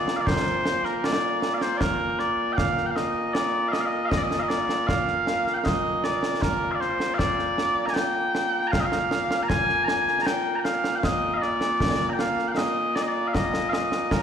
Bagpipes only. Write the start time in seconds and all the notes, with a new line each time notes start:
Already playing: A#2 A#3 D5
0.17 F5
0.21 D5
0.26 C5
0.85 A#4
1.04 D5
1.54 F5
1.58 C5 D5
1.77 A#4 D5
2.19 D5
2.53 G5
2.57 F5
2.86 G5
2.91 F5
2.96 D#5
3.34 D5
3.69 D#5 F5
3.81 F5
3.86 D#5
4.05 D#5 F5
4.18 D5
4.23 D#5
4.39 D#5 F5
4.49 D5
4.87 F5
5.54 F5 G5
5.65 D#5
6.04 D5
6.42 A#4
6.71 D5 F5
6.80 C5
7.14 F5
7.18 D5
7.86 G#5 A#5
7.94 G5
8.67 F5 A#5
8.80 D#5
8.85 F5
9.43 A#5
9.48 G#5
9.84 G#5 A#5
10.22 A#5
10.26 G5
10.56 G5 A#5
10.64 F5
10.95 F5 G5
11.04 D#5
11.34 D#5 F5
11.42 D5
12.10 G5 A#5
12.20 F5
12.48 F5 G5
12.57 D#5
12.96 D5
13.02 D#5
13.08 D5
13.28 F5
13.33 D#5
13.69 D#5 F5
14.12 A#4